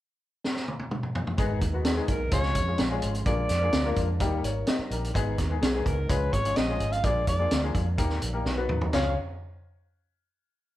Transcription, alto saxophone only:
1.86 2.11 G#4 medium
2.10 2.33 A#4 medium
2.33 2.99 C#5 medium
3.26 4.17 D5 medium
5.61 5.88 G#4 medium
5.86 6.11 A#4 medium
6.09 6.35 B4 medium
6.33 6.58 C#5 loud
6.56 6.94 D#5 loud
6.92 7.06 F5 loud
7.04 7.28 D5 medium
7.28 7.72 D5 medium
8.94 9.16 F5 medium

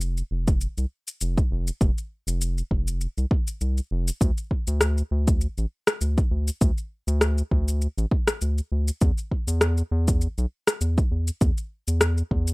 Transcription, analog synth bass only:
0.00 0.23 F1 medium
0.31 0.67 F1 medium
0.78 0.86 C2 medium
1.21 1.41 F1 medium
1.51 1.70 F1 medium
1.81 1.91 F1 loud
2.27 2.62 F1 medium
2.71 3.07 F1 medium
3.18 3.26 C2 medium
3.61 3.80 C2 medium
3.91 4.11 F1 medium
4.21 4.31 D2 loud
4.67 5.03 D2 medium
5.11 5.47 D2 medium
5.58 5.66 A1 medium
6.01 6.21 D2 medium
6.31 6.50 D2 medium
6.61 6.71 D2 medium
7.07 7.42 D2 medium
7.52 7.88 D2 medium
7.98 8.06 A1 medium
8.42 8.61 D2 medium
8.72 8.91 D2 medium
9.01 9.11 E2 loud
9.47 9.83 E2 medium
9.91 10.27 E2 medium
10.38 10.46 B1 loud
10.81 11.00 E2 medium
11.11 11.31 E2 medium
11.41 11.51 E2 medium
11.88 12.23 E2 medium
12.31 12.54 E2 medium

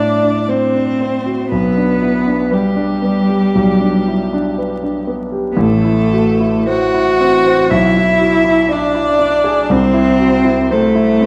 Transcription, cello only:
0.00 0.50 D4 medium
0.48 1.49 C4 medium
1.49 2.52 B3 medium
2.50 5.08 G3 medium
5.52 5.61 B3 medium
5.60 6.68 A3 medium
6.69 7.72 F#4 loud
7.70 8.73 E4 loud
8.72 9.72 D4 loud
9.71 10.73 C4 loud
10.71 11.26 A3 loud

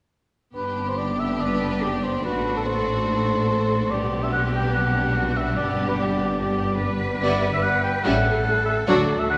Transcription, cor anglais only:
0.56 0.90 B4 soft
0.88 0.99 C5 soft
0.98 1.21 D5 medium
1.19 1.42 E5 medium
1.40 2.05 D5 soft
2.03 2.23 C5 soft
2.24 2.56 B4 soft
2.57 2.62 A4 soft
2.65 3.93 C5 medium
3.91 4.25 D5 medium
4.23 4.32 E5 soft
4.33 4.43 F#5 medium
4.55 4.74 G5 medium
4.75 5.38 F#5 medium
5.37 5.56 E5 medium
5.56 5.87 D5 medium
5.88 5.93 B4 medium
5.98 6.93 D5 medium
7.23 7.51 D5 medium
7.53 7.64 E5 medium
7.63 7.83 F#5 medium
7.83 8.05 G5 medium
8.04 8.65 F#5 medium
8.65 8.75 E5 medium
8.88 9.21 D5 medium
9.19 9.30 E5 medium
9.30 9.38 F#5 medium

